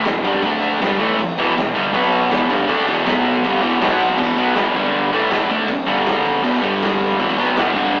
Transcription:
0.05 picked electric bass E1, distorted electric guitar E2 B2, snare, ride
0.23 picked electric bass G1, distorted electric guitar G2 D3 G3, ride
0.34 kick
0.42 picked electric bass D2, distorted electric guitar D3 A3 D4, kick, ride
0.62 ride
0.79 picked electric bass G1, distorted electric guitar G2 D3 G3, snare, ride
0.98 picked electric bass A1, distorted electric guitar A2 E3 A3, ride
1.10 kick
1.19 kick, ride
1.38 picked electric bass E1, distorted electric guitar E2 B2 E3, ride
1.56 picked electric bass E1, distorted electric guitar E2 B2, snare, ride
1.74 picked electric bass G1, distorted electric guitar G2 D3 G3, ride
1.85 kick
1.93 picked electric bass B1, distorted electric guitar B2 F#3 B3, kick, ride
2.12 ride
2.23 snare
2.30 picked electric bass E1, distorted electric guitar E2 B2 E3, snare, ride
2.50 picked electric bass G1, distorted electric guitar G2 D3 G3, ride
2.60 kick
2.68 picked electric bass D2, distorted electric guitar D3 A3 D4, kick, ride
2.87 picked electric bass E1, distorted electric guitar E2 B2 E3, ride
3.05 picked electric bass B1, distorted electric guitar B2 F#3 B3, snare, ride
3.25 ride
3.44 picked electric bass G1, distorted electric guitar G2 D3 G3, kick, ride
3.62 picked electric bass E1, distorted electric guitar E2 B2 E3, ride
3.80 picked electric bass B1, distorted electric guitar B2 F#3 B3, snare, ride
4.00 ride
4.09 kick
4.17 picked electric bass E1, distorted electric guitar E2 B2 E3, kick, crash
4.37 picked electric bass B1, distorted electric guitar B2 F#3 B3, ride
4.55 picked electric bass E1, distorted electric guitar E2 B2 E3, snare, ride
4.75 picked electric bass G1, distorted electric guitar G2 D3 G3, kick, crash
5.12 picked electric bass A1, distorted electric guitar A2 E3 A3, ride
5.30 picked electric bass E1, distorted electric guitar E2 B2 E3, snare, ride
5.49 picked electric bass D2, distorted electric guitar D3 A3 D4, kick, ride
5.67 muted distorted electric guitar stroke, muted picked electric bass stroke, kick, ride
5.86 picked electric bass G1, distorted electric guitar G2 D3 G3, ride
6.06 snare, ride
6.25 kick, ride
6.43 picked electric bass E1, distorted electric guitar E2 B2 E3, ride
6.61 picked electric bass G1, distorted electric guitar G2 D3 G3, ride
6.82 snare, ride
7.01 kick, ride
7.19 picked electric bass E1, distorted electric guitar E2 B2 E3, kick, ride
7.38 picked electric bass B1, distorted electric guitar B2 F#3 B3, ride
7.57 picked electric bass E1, distorted electric guitar E2 B2 E3, snare, ride
7.74 picked electric bass G1, distorted electric guitar G2 D3 G3, kick, crash

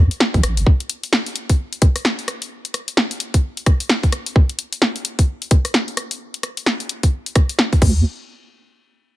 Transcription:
0.11 closed hi-hat
0.20 snare
0.34 wobble bass C2, kick, closed hi-hat
0.43 wobble bass A1, cross-stick, closed hi-hat
0.57 wobble bass G1, closed hi-hat
0.66 kick
0.80 closed hi-hat
0.90 closed hi-hat
1.03 closed hi-hat
1.13 snare
1.26 closed hi-hat
1.36 closed hi-hat
1.49 kick, closed hi-hat
1.73 closed hi-hat
1.82 kick, closed hi-hat
1.96 cross-stick, closed hi-hat
2.05 snare
2.19 closed hi-hat
2.28 cross-stick, closed hi-hat
2.42 closed hi-hat
2.65 closed hi-hat
2.74 cross-stick, closed hi-hat
2.88 closed hi-hat
2.97 snare
3.11 closed hi-hat
3.20 closed hi-hat
3.34 kick, closed hi-hat
3.57 closed hi-hat
3.66 kick, cross-stick, closed hi-hat
3.80 closed hi-hat
3.89 snare
4.03 kick, closed hi-hat
4.12 cross-stick, closed hi-hat
4.26 closed hi-hat
4.36 kick
4.49 closed hi-hat
4.59 closed hi-hat
4.73 closed hi-hat
4.82 snare
4.96 closed hi-hat
5.05 closed hi-hat
5.19 kick, closed hi-hat
5.42 closed hi-hat
5.51 kick, closed hi-hat
5.65 cross-stick, closed hi-hat
5.74 snare
5.88 closed hi-hat
5.97 cross-stick, closed hi-hat
6.11 closed hi-hat
6.34 closed hi-hat
6.43 cross-stick, closed hi-hat
6.57 closed hi-hat
6.66 snare
6.80 closed hi-hat
6.89 closed hi-hat
7.03 kick, closed hi-hat
7.26 closed hi-hat
7.36 kick, cross-stick, closed hi-hat
7.49 closed hi-hat
7.59 snare
7.73 kick, closed hi-hat
7.82 wobble bass D2, kick, crash

